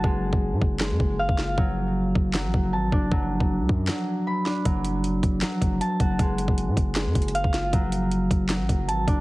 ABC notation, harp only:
X:1
M:4/4
L:1/8
Q:1/4=156
K:F#m
V:1 name="Harp"
G,4 G,2 ^e ^E | F,4 F,2 a D | F,4 F,2 b D | F,4 F,2 a F |
G,4 G,2 ^e ^E | F,4 F,2 a D |]